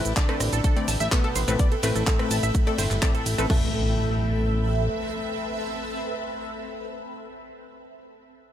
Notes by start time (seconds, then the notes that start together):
Already playing: E3 A3 C4 E4 A4 B4 E5 G5 B5
0.05 A1, closed hi-hat, shaker
0.16 D3 D4 D5, kick, clap, closed hi-hat, shaker
0.29 A3 C4 A4 B4, cross-stick, closed hi-hat
0.40 A1, cross-stick, open hi-hat, ride, shaker
0.53 A1 A4, closed hi-hat, shaker
0.64 A4, kick, closed hi-hat, shaker
0.77 A3 C4 D5, closed hi-hat
0.88 A1 A5, open hi-hat, ride, shaker
1.00 A1 E5, closed hi-hat, shaker
1.12 B2 A3 B3 A4, kick, clap, closed hi-hat, shaker
1.24 A4, closed hi-hat
1.36 A1 C5, open hi-hat, ride, shaker
1.48 A1 A3 C4 B4, closed hi-hat, shaker
1.59 D5, kick, closed hi-hat, shaker
1.72 A4, closed hi-hat
1.83 A1 A2 A3 C4 B4, open hi-hat, ride, shaker
1.96 A1 A4, closed hi-hat, shaker
2.07 A4, kick, clap, closed hi-hat, shaker
2.19 A3 C4 B4, cross-stick, closed hi-hat
2.31 A1 A5, open hi-hat, ride, shaker
2.43 A1 E5, closed hi-hat, shaker
2.55 kick, closed hi-hat, shaker
2.67 A3 C4 A4 D5, closed hi-hat
2.78 G1 A2 A3 C5, open hi-hat, ride, shaker
2.91 G1, clap, closed hi-hat, shaker
3.02 A3 C4 A4 D5, kick, clap, closed hi-hat, shaker
3.15 A4, closed hi-hat
3.26 A1, open hi-hat, ride, shaker
3.38 A1 A3 C4 A4 B4, closed hi-hat, shaker
3.50 A1 A3 C4 A4 B4 E5, kick, crash, impact